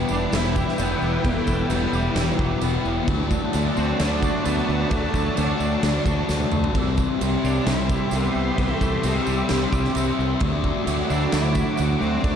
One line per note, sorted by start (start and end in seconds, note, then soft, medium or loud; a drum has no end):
0.00 0.31 E2 medium
0.00 0.32 B2 medium
0.00 0.33 E3 medium
0.00 3.07 E3 medium
0.00 0.79 G3 medium
0.00 3.08 G3 medium
0.00 0.79 B3 medium
0.00 3.09 B3 medium
0.00 3.05 E4 medium
0.00 3.09 E4 medium
0.00 3.04 B4 medium
0.00 3.05 G5 loud
0.09 0.25 E1 medium
0.09 0.35 D4 loud
0.09 0.55 G4 medium
0.09 tambourine medium
0.32 0.62 E1 medium
0.32 0.77 E2 medium
0.32 0.79 B2 loud
0.32 0.80 E3 loud
0.32 1.48 E4 medium
0.32 0.81 E4 loud
0.32 snare loud
0.32 tambourine medium
0.32 crash medium
0.56 1.71 G4 medium
0.56 kick medium
0.56 tambourine medium
0.68 snare soft
0.78 0.94 E1 medium
0.78 1.23 E2 medium
0.78 1.24 B2 medium
0.78 1.26 E3 medium
0.78 1.25 B3 medium
0.78 1.70 B3 medium
0.78 tambourine medium
0.78 crash medium
1.02 1.17 E1 medium
1.02 1.25 G3 medium
1.02 tambourine soft
1.23 1.40 E1 medium
1.23 1.68 E2 medium
1.23 1.70 B2 medium
1.23 1.71 E3 loud
1.23 1.48 G3 medium
1.23 1.68 A3 loud
1.23 kick loud
1.23 crash medium
1.47 1.63 E1 medium
1.47 2.63 G3 medium
1.47 kick medium
1.47 tambourine medium
1.69 1.85 E1 loud
1.69 2.14 E2 medium
1.69 2.15 B2 medium
1.69 2.17 E3 medium
1.69 2.29 G3 medium
1.69 2.62 B3 medium
1.69 tambourine loud
1.69 crash medium
1.93 2.08 E1 medium
1.93 2.39 G4 medium
1.93 tambourine medium
2.15 2.30 E1 loud
2.15 2.60 E2 medium
2.15 2.61 B2 loud
2.15 2.62 E3 loud
2.15 3.08 E4 medium
2.15 snare loud
2.15 tambourine medium
2.15 crash medium
2.29 2.57 F#3 medium
2.39 2.54 E1 medium
2.39 3.08 G4 medium
2.39 kick loud
2.61 2.77 E1 medium
2.61 3.06 E2 medium
2.61 3.07 B2 medium
2.61 3.07 E3 medium
2.61 3.08 B3 medium
2.61 tambourine medium
2.61 crash medium
2.85 3.00 E1 medium
2.85 3.08 G3 medium
2.85 tambourine soft
3.07 3.37 D2 loud
3.07 3.53 D3 medium
3.07 3.30 F#3 medium
3.07 6.75 F#3 medium
3.07 3.54 A3 loud
3.07 6.75 A3 medium
3.07 3.55 D4 loud
3.07 6.71 F#4 medium
3.07 6.70 D5 medium
3.07 6.71 A5 medium
3.07 kick loud
3.07 crash medium
3.11 6.76 D4 medium
3.31 4.46 F#3 medium
3.31 kick medium
3.31 tambourine medium
3.53 3.69 D2 medium
3.53 3.97 D3 medium
3.53 3.98 A3 medium
3.53 4.45 A3 medium
3.53 4.00 D4 medium
3.53 tambourine medium
3.53 crash medium
3.76 3.92 D2 medium
3.76 3.99 C4 loud
3.76 4.22 F#4 medium
3.76 tambourine medium
3.98 4.29 D2 loud
3.98 4.43 D3 medium
3.98 4.45 A3 medium
3.98 4.42 D4 loud
3.98 5.15 D4 medium
3.98 4.46 D4 loud
3.98 snare loud
3.98 tambourine medium
3.98 crash medium
4.22 5.38 F#4 medium
4.22 kick medium
4.22 tambourine medium
4.44 4.61 D2 medium
4.44 4.89 D3 medium
4.44 4.90 A3 medium
4.44 5.37 A3 medium
4.44 4.92 B3 medium
4.44 4.92 D4 medium
4.44 tambourine medium
4.44 crash medium
4.69 4.83 D2 medium
4.69 4.91 F#3 medium
4.69 tambourine soft
4.90 5.06 D2 loud
4.90 5.34 D3 medium
4.90 5.14 F#3 medium
4.90 5.38 A3 loud
4.90 5.36 A3 medium
4.90 5.37 D4 loud
4.90 kick loud
4.90 tambourine soft
4.90 crash soft
5.14 5.29 D2 medium
5.14 6.29 F#3 medium
5.14 kick medium
5.14 tambourine medium
5.35 5.52 D2 loud
5.35 5.80 D3 medium
5.35 5.82 A3 medium
5.35 6.28 A3 medium
5.35 6.24 D4 medium
5.35 5.83 D4 medium
5.35 tambourine medium
5.35 crash medium
5.60 5.75 D2 medium
5.60 6.05 F#4 medium
5.60 tambourine medium
5.82 5.98 D2 loud
5.82 6.26 D3 medium
5.82 6.27 A3 medium
5.82 6.74 D4 medium
5.82 6.29 D4 loud
5.82 snare loud
5.82 tambourine medium
5.82 crash medium
6.06 6.21 D2 medium
6.06 6.75 F#4 medium
6.06 kick medium
6.06 tambourine medium
6.27 6.44 D2 medium
6.27 6.72 D3 medium
6.27 6.73 A3 medium
6.27 6.75 A3 medium
6.27 6.74 D4 medium
6.27 snare medium
6.27 tambourine medium
6.40 high tom medium
6.52 6.67 D2 medium
6.52 6.75 F#3 medium
6.52 mid tom medium
6.52 tambourine soft
6.64 floor tom medium
6.73 7.04 C2 medium
6.73 10.40 C3 medium
6.73 7.19 C3 medium
6.73 6.98 E3 medium
6.73 10.41 G3 medium
6.73 7.21 G3 medium
6.73 10.41 C4 medium
6.73 7.22 C4 loud
6.73 10.43 E4 medium
6.73 10.38 G4 medium
6.73 12.36 E5 medium
6.73 10.38 C6 medium
6.73 kick medium
6.73 crash medium
6.97 8.36 E3 medium
6.97 kick medium
6.97 tambourine medium
7.20 7.36 C2 medium
7.20 7.65 C3 medium
7.20 7.67 G3 medium
7.20 8.36 C4 medium
7.20 7.68 C4 medium
7.20 tambourine loud
7.20 crash medium
7.44 7.59 C2 medium
7.44 7.68 D4 loud
7.44 7.89 G4 medium
7.44 tambourine medium
7.66 7.96 C2 loud
7.66 8.11 C3 loud
7.66 8.12 G3 loud
7.66 8.14 C4 loud
7.66 9.50 E4 medium
7.66 8.14 E4 loud
7.66 snare loud
7.66 tambourine medium
7.66 crash medium
7.89 9.04 G4 medium
7.89 kick loud
7.89 tambourine medium
8.11 8.27 C2 medium
8.11 8.56 C3 medium
8.11 8.58 G3 medium
8.11 8.60 B3 medium
8.11 8.59 C4 medium
8.11 tambourine loud
8.11 crash medium
8.34 8.50 C2 medium
8.34 8.58 E3 medium
8.34 tambourine soft
8.57 8.73 C2 medium
8.57 9.03 C3 medium
8.57 8.82 E3 medium
8.57 9.04 G3 loud
8.57 9.06 A3 medium
8.57 9.05 C4 medium
8.57 kick loud
8.57 crash medium
8.81 8.96 C2 medium
8.81 10.17 E3 medium
8.81 kick medium
8.81 tambourine medium
9.03 9.18 C2 medium
9.03 9.48 C3 medium
9.03 9.49 G3 medium
9.03 9.93 G3 medium
9.03 9.94 C4 medium
9.03 9.51 C4 medium
9.03 tambourine loud
9.03 crash medium
9.27 9.42 C2 medium
9.27 9.71 G4 medium
9.27 tambourine medium
9.49 9.65 C2 loud
9.49 9.93 C3 loud
9.49 9.94 G3 medium
9.49 9.96 C4 loud
9.49 10.44 E4 medium
9.49 snare loud
9.49 tambourine medium
9.49 crash medium
9.72 9.87 C2 medium
9.72 10.41 G4 medium
9.72 kick medium
9.72 tambourine medium
9.84 snare soft
9.94 10.10 C2 medium
9.94 10.39 C3 medium
9.94 10.40 G3 medium
9.94 10.41 C4 medium
9.94 tambourine loud
9.94 crash medium
10.18 10.33 C2 medium
10.18 10.40 E3 medium
10.18 tambourine soft
10.40 10.71 D2 medium
10.40 10.85 D3 loud
10.40 10.64 F#3 medium
10.40 12.36 F#3 medium
10.40 10.87 A3 loud
10.40 12.36 A3 medium
10.40 10.88 D4 medium
10.40 12.36 F#4 medium
10.40 12.36 D6 loud
10.40 kick loud
10.40 crash medium
10.44 12.36 E4 medium
10.64 10.86 F#3 medium
10.64 kick medium
10.85 11.02 D2 medium
10.85 11.31 D3 medium
10.85 11.78 F#3 medium
10.85 11.33 A3 medium
10.85 11.34 D4 medium
10.85 tambourine loud
10.85 crash medium
11.10 11.25 D2 medium
11.10 11.33 D4 medium
11.10 11.55 E4 medium
11.10 tambourine medium
11.32 11.62 D2 loud
11.32 11.76 D3 medium
11.32 12.36 A3 medium
11.32 11.78 A3 loud
11.32 11.79 D4 loud
11.32 11.75 E4 loud
11.32 snare loud
11.32 tambourine medium
11.32 crash medium
11.55 12.36 E4 medium
11.55 kick medium
11.55 tambourine medium
11.77 11.94 D2 medium
11.77 12.21 D3 medium
11.77 11.99 F#3 medium
11.77 12.23 A3 medium
11.77 12.24 D4 medium
11.77 tambourine medium
11.77 crash medium
12.01 12.16 D2 medium
12.01 12.22 F#3 medium
12.01 12.23 C4 medium
12.01 tambourine soft
12.22 12.36 D2 loud
12.22 12.36 D3 medium
12.22 12.36 F#3 medium
12.22 12.36 A3 medium
12.22 12.36 D4 loud
12.22 12.36 D4 medium
12.22 kick loud
12.22 tambourine soft
12.22 crash medium